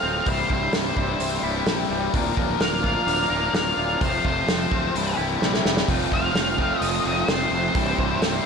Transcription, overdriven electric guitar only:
Already playing: F2 C3 F3 A3 C4 F4
0.25 C2 G2 C3 G3 E4
0.49 C3 G3 E4
0.73 G2 C3 G3 E4
0.97 C3 G3 E4
1.43 C3 G3 E4
1.66 C2 G2 C3 G3 E4
2.13 A#2 F3 A#3 D4 F4 A#4
2.36 A#3 D4 F4 A#4
2.60 A#3 D4 F4 A#4
2.84 A#3 D4 F4 A#4
3.30 A#3 D4 F4 A#4
3.53 A#2 F3 A#3 D4 F4 A#4
4.00 F2 C3 F3 A3 C4 F4
4.24 F3 A3 C4 F4
4.47 F3 A3 C4 F4
4.71 F3 A3 C4 F4
4.94 C2 G2 C3 G3 E4
5.18 C3 G3 E4
5.40 C2 G2 C3 G3 E4
5.88 F2 C3 F3 A3 C4 F4
6.11 F3 A3 C4 F4
6.34 F3 A3 C4 F4
6.58 F3 A3 C4 F4
7.04 F3 A3 C4 F4
7.28 F2 C3 F3 A3 C4 F4
7.74 C2 G2 C3 G3 E4
7.97 C3 G3 E4
8.21 G2 C3 G3 E4

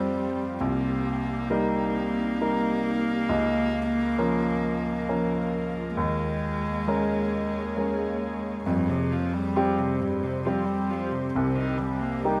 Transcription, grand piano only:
Already playing: G3 C4 C5
0.61 C2
1.50 G3 D#4 A#4
2.41 G3 D#4 A#4
3.29 C#2
4.18 F3 C#4 A#4
5.09 F3 C#4 A#4
5.97 D#2
6.87 G#3 C#4 A#4
7.77 G#3 C#4 A#4
8.66 F2
9.56 G3 C4 G4
10.46 G3 C4 G4
11.36 C2
12.24 A#3 D#4 G4

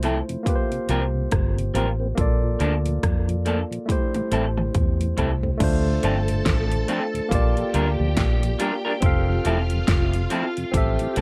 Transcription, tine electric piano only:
Already playing: A3 E4 F4 C5
0.43 A#3 F4
0.47 G4 B4
0.56 C5
2.15 A#3 F4 A4
2.21 D5
3.86 A3 E4
3.90 G4 C5
5.57 A3 D4
5.61 F4 C5
7.29 A#3 F4 G4
7.35 D5
9.00 C4 F4 A4
9.06 F5
10.71 C4 G4 A4
10.77 E5

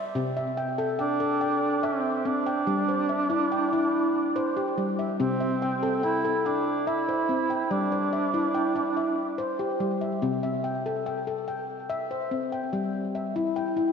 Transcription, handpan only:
Already playing: D5 E5
0.15 C3 C4
0.37 E5
0.57 G5
0.78 A4
0.99 G5
1.20 A4
1.41 G5
1.83 E5
2.25 C4
2.46 G5
2.67 G3
2.89 C5
3.09 E5
3.30 E4
3.52 G5
3.73 E4
4.36 C5
4.57 G4
4.78 G3
4.99 E5
5.20 C3 C4
5.40 E5
5.62 G5
5.83 A4
6.03 G5
6.25 A4
6.46 G5
6.87 E5
7.09 C5
7.29 C4
7.50 G5
7.71 G3
7.92 C5
8.13 E5
8.34 E4
8.54 G5
8.76 E4
8.97 E5
9.38 C5
9.59 G4
9.80 G3
10.01 E5
10.22 C3 C4
10.43 E5
10.64 G5
10.86 A4
11.06 G5
11.27 A4
11.48 G5
11.90 E5
12.11 C5
12.31 C4
12.52 G5
12.73 G3
13.15 E5
13.36 E4
13.56 G5
13.77 E4

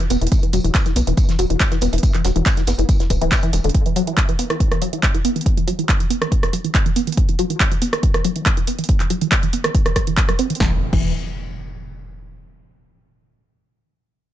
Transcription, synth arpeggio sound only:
0.00 E3
0.10 B3
0.22 E3
0.43 E3
0.53 F#3
0.65 E3
0.86 E3
0.96 B3
1.07 E3
1.29 E3
1.39 F#3
1.50 E3
1.72 E3
1.82 B3
1.93 E3
2.15 E3
2.25 F#3
2.36 E3
2.57 E3
2.68 B3
2.79 E3
3.00 E3
3.10 E3
3.22 E3
3.43 E3
3.53 E3
3.65 D3
3.86 E3
3.96 F#3
4.07 E3
4.29 E3
4.39 B3
4.50 E3
4.72 E3
4.82 F#3
4.93 E3
5.14 E3
5.25 B3
5.36 E3
5.57 E3
5.68 F#3
5.79 E3
6.00 E3
6.10 B3
6.21 E3
6.43 E3
6.53 F#3
6.64 E3
6.86 E3
6.96 B3
7.07 E3
7.29 E3
7.39 F#3
7.50 E3
7.72 E3
7.82 B3
7.93 E3
8.14 E3
8.25 F#3
8.36 E3
8.57 E3
8.67 B3
8.79 E3
9.00 E3
9.10 F#3
9.22 E3
9.43 E3
9.53 B3
9.65 E3
9.86 E3
9.96 G3
10.07 E3
10.29 F#3
10.39 C4
10.50 E3
10.60 E3
10.93 E3

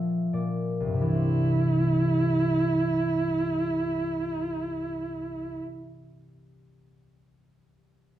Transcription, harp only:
Already playing: A#2 F3 E5 G5
0.33 A#2 D5
0.80 C2
0.87 G2
0.94 C3
1.01 E3
1.08 G3
1.14 C4

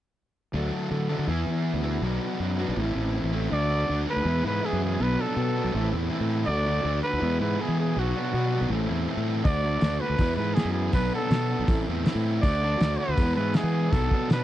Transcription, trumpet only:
3.53 D5
4.10 B4
4.47 B4
4.66 G#4
4.84 G#4
5.02 B4
5.21 A4
6.46 D5
7.03 B4
7.40 B4
7.61 G#4
7.79 G#4
7.99 F#4
9.45 D5
10.00 B4
10.36 B4
10.54 G#4
10.73 G#4
10.94 B4
11.15 A4
12.42 D5
12.98 B4
13.36 B4
13.56 G#4
13.92 A4
14.32 B4

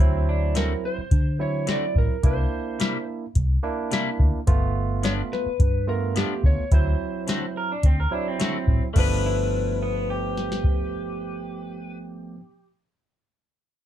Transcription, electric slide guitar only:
0.57 A#4
0.85 C5
1.41 C#5
1.71 D5
1.98 A#4
2.27 C5
5.04 C#5
5.33 B4
5.89 A#4
6.17 G4
6.46 C#5
6.74 C5
8.98 B4

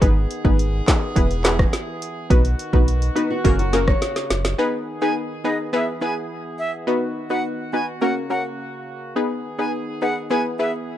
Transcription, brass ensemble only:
0.02 D#3 B3 G#4
1.16 E3
2.30 D#3 B3 F#4
3.45 C#3 A#3
4.59 D#3 B3 G#4
5.73 E3 G#4
6.88 D#3 F#4
8.02 C#3 A#3
9.16 D#3 B3 G#4
10.31 E3 B3 G#4

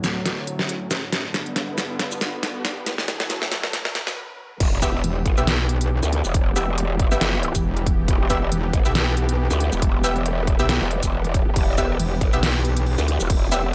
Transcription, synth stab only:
4.82 B3 G4 E5
5.37 B3 G4 E5
6.56 B3 G4 E5
7.11 B3 G4 E5
8.30 B3 G4 E5
8.85 B3 G4 E5
10.04 B3 G4 E5
10.59 B3 G4 E5
11.78 B3 G4 E5
12.33 B3 G4 E5
13.52 B3 G4 E5

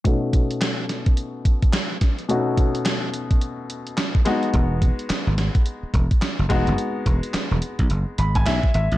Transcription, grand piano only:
0.04 B2 A3 C#4 D#4 F#4
2.29 B2 A3 C#4 D#4 F#4
4.25 G#3 B3 D#4 F#4
6.49 G#3 B3 D#4 F#4
8.19 B5
8.36 G#5
8.46 E5
8.74 E5

